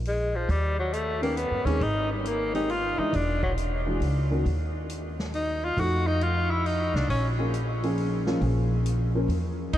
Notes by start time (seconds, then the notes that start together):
Already playing: A#1
0.05 G#3, open hi-hat
0.36 F3
0.49 D#2 G3, kick, open hi-hat
0.80 F#3
0.93 A3, closed hi-hat
1.21 D#3 A#3 B3 C#4 G4, open hi-hat
1.37 B3, closed hi-hat
1.51 F#2
1.65 D#2 D#3 G#3 C4 C#4 G#4, open hi-hat
1.81 G#1 D#4, kick, open hi-hat
2.12 G3
2.25 A#3, closed hi-hat
2.54 D#3 G#3 C4 D#4 G4, open hi-hat
2.69 F4, open hi-hat
2.98 E3 G#3 D4 D#4 E4, muted upright bass stroke
3.13 E1 D4, kick, open hi-hat
3.43 F#3, kick
3.58 closed hi-hat
3.86 E3 G#3 D4 F#4
4.00 C#2, open hi-hat
4.30 D#3 A#3 C#4 F#4
4.46 D#2, kick, open hi-hat
4.89 closed hi-hat
5.19 snare
5.34 D#4, open hi-hat
5.65 F4
5.77 F2 F3 A3 D#4 F#4, kick, open hi-hat
6.07 D#4
6.21 F4, closed hi-hat
6.51 E4
6.66 D#4, open hi-hat
6.94 C2 D4, snare
7.09 A#1 C#4, kick, open hi-hat
7.38 F3 A#3 C#4 G#4
7.54 closed hi-hat
7.83 F3 A#3 C#4 G#4, open hi-hat
7.98 open hi-hat
8.26 F3 A#3 C#4 F4, snare
8.41 A#1 F3 A#3 C#4 G#4, kick, open hi-hat
8.86 closed hi-hat
9.15 F3 A#3 C#4 A#4
9.28 E2, open hi-hat
9.73 D#2 D#4, kick, ride